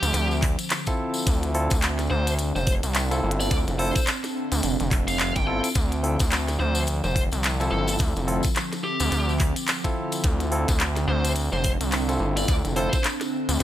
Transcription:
Already playing: ambient pad D3 F3 C4, lead electric guitar G4
0.03 analog synth bass D2, closed hi-hat, tambourine
0.14 analog synth bass D2, snare, closed hi-hat, tambourine
0.31 tambourine
0.42 kick, clap, open hi-hat
0.59 closed hi-hat, tambourine
0.70 clap, closed hi-hat, tambourine
0.86 tine electric piano C4 E4 F4 A4, kick, closed hi-hat, tambourine
1.14 tambourine
1.26 analog synth bass D2, ambient pad D4, kick, closed hi-hat, tambourine
1.43 closed hi-hat, tambourine
1.55 tine electric piano C4 E4 F4 A4, open hi-hat
1.70 analog synth bass D2, kick, closed hi-hat, tambourine
1.82 clap, closed hi-hat, tambourine
1.99 snare, closed hi-hat, tambourine
2.11 analog synth bass D2, lead electric guitar C5
2.27 closed hi-hat, tambourine
2.39 closed hi-hat, tambourine
2.56 analog synth bass F1, lead electric guitar C5, tambourine
2.67 kick, open hi-hat
2.83 analog synth bass C2, closed hi-hat, tambourine
2.95 clap, closed hi-hat, tambourine
3.11 tine electric piano C4 E4 F4 A4, closed hi-hat, tambourine
3.24 analog synth bass G1
3.31 closed hi-hat
3.40 lead electric guitar D5, tambourine
3.51 analog synth bass D2, kick, closed hi-hat, tambourine
3.68 analog synth bass F1, closed hi-hat, tambourine
3.79 tine electric piano C4 E4 F4 A4, lead electric guitar C5, open hi-hat
3.82 open hi-hat
3.85 open hi-hat
3.88 open hi-hat
3.93 lead electric guitar C5, kick, closed hi-hat, open hi-hat, tambourine
4.07 clap, closed hi-hat, tambourine
4.24 snare, closed hi-hat, tambourine
4.52 analog synth bass D2, closed hi-hat, tambourine
4.63 analog synth bass F1, closed hi-hat, tambourine
4.80 analog synth bass F1, closed hi-hat, tambourine
4.91 kick, clap, open hi-hat
5.08 lead electric guitar F5, closed hi-hat, tambourine
5.19 lead electric guitar F5, clap, closed hi-hat, tambourine
5.36 analog synth bass G1, lead electric guitar G5, kick, closed hi-hat, tambourine
5.47 tine electric piano C4 E4 F4 A4, lead electric guitar G5
5.64 closed hi-hat, tambourine
5.75 analog synth bass D2, ambient pad F3, kick, closed hi-hat, tambourine
5.92 closed hi-hat, tambourine
6.03 tine electric piano C4 E4 F4 A4, open hi-hat
6.19 analog synth bass D2, kick, closed hi-hat, tambourine
6.31 clap, closed hi-hat, tambourine
6.48 snare, closed hi-hat, tambourine
6.60 analog synth bass D2, lead electric guitar C5
6.75 tambourine
6.87 closed hi-hat, tambourine
7.04 analog synth bass F1, lead electric guitar C5, tambourine
7.16 kick, open hi-hat
7.32 analog synth bass C2, closed hi-hat, tambourine
7.43 clap, closed hi-hat, tambourine
7.60 tine electric piano C4 E4 F4 A4, closed hi-hat, tambourine
7.71 analog synth bass G1, lead electric guitar A4
7.88 closed hi-hat, tambourine
7.99 analog synth bass D2, kick, closed hi-hat, tambourine
8.16 analog synth bass F1, closed hi-hat, tambourine
8.27 tine electric piano C4 E4 F4 A4, open hi-hat
8.43 kick, closed hi-hat, tambourine
8.55 clap, closed hi-hat, tambourine
8.72 snare, closed hi-hat, tambourine
8.84 lead electric guitar G4
9.00 analog synth bass D2, closed hi-hat, tambourine
9.12 analog synth bass D2, snare, closed hi-hat, tambourine
9.29 tambourine
9.40 kick, clap, open hi-hat
9.56 closed hi-hat, tambourine
9.68 clap, closed hi-hat, tambourine
9.84 tine electric piano C4 E4 F4 A4, kick, closed hi-hat, tambourine
10.12 closed hi-hat, tambourine
10.23 analog synth bass D2, ambient pad D4, kick, closed hi-hat, tambourine
10.40 closed hi-hat, tambourine
10.52 tine electric piano C4 E4 F4 A4, open hi-hat
10.68 analog synth bass D2, kick, closed hi-hat, tambourine
10.80 clap, closed hi-hat, tambourine
10.96 snare, closed hi-hat, tambourine
11.08 analog synth bass D2, lead electric guitar C5
11.25 closed hi-hat, tambourine
11.36 closed hi-hat, tambourine
11.52 analog synth bass F1, lead electric guitar C5, tambourine
11.64 kick, open hi-hat
11.81 analog synth bass C2, closed hi-hat, tambourine
11.92 clap, closed hi-hat, tambourine
12.09 tine electric piano C4 E4 F4 A4, closed hi-hat, tambourine
12.20 analog synth bass G1
12.37 lead electric guitar D5, closed hi-hat, tambourine
12.48 analog synth bass D2, kick, closed hi-hat, tambourine
12.65 analog synth bass F1, closed hi-hat, tambourine
12.76 tine electric piano C4 E4 F4 A4, lead electric guitar C5, open hi-hat
12.93 lead electric guitar C5, kick, closed hi-hat, tambourine
13.04 clap, closed hi-hat, tambourine
13.21 snare, closed hi-hat, tambourine
13.49 analog synth bass D2, closed hi-hat, tambourine

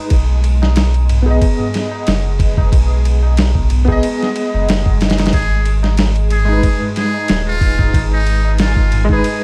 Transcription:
Already playing: synth texture G#3 G#4, upright piano B4
0.10 analog synth bass B1, kick, ride, tabla na
0.29 tabla na
0.44 ride
0.62 snare, tabla na
0.76 snare, ride, tabla na
0.94 ride, tabla na
1.09 ride, tabla ge
1.22 upright piano B3 G#4
1.27 upright piano D#5, tabla na
1.42 kick, ride, tabla na
1.59 tabla na, tabla ge
1.74 snare, ride
1.91 tabla na
2.07 analog synth bass F#1, snare, ride, tabla na
2.26 tabla na
2.39 kick, ride
2.57 kick, tabla na, tabla ge
2.72 analog synth bass B1, kick, ride, tabla na
2.90 tabla na
3.05 ride
3.23 tabla na
3.37 snare, ride, tabla na
3.55 kick, tabla na
3.70 ride, tabla ge
3.85 upright piano B3 G#4, kick, tabla na
3.92 upright piano D#5
4.03 ride, tabla na
4.22 snare, tabla na
4.36 ride
4.54 analog synth bass F#1, tabla na
4.69 analog synth bass F#1, snare, ride, tabla na
4.86 kick, tabla na, tabla ge
5.01 snare, ride
5.10 snare, ride
5.18 snare, ride, tabla na
5.26 snare, ride
5.33 analog synth bass G#1, muted trumpet G#4, kick, ride, tabla na
5.52 tabla na
5.65 ride
5.83 snare, tabla na
5.97 snare, ride, tabla na
6.15 ride, tabla na
6.30 muted trumpet G#4, ride, tabla ge
6.45 upright piano G#3 D#4, tabla na
6.52 upright piano B4
6.63 kick, ride, tabla na
6.81 tabla na, tabla ge
6.96 muted trumpet G#4, snare, ride
7.14 tabla na
7.28 analog synth bass D#1, snare, ride, tabla na
7.46 muted trumpet F4, tabla na
7.61 kick, ride
7.79 kick, tabla na, tabla ge
7.93 analog synth bass G#1, kick, ride, tabla na
8.12 muted trumpet D#4, tabla na
8.27 ride
8.45 tabla na
8.58 muted trumpet F4, snare, ride, tabla na
8.76 kick, tabla na
8.92 ride, tabla ge
9.05 upright piano G#3
9.09 upright piano D#4 B4, muted trumpet G#4, kick, tabla na
9.24 ride, tabla na

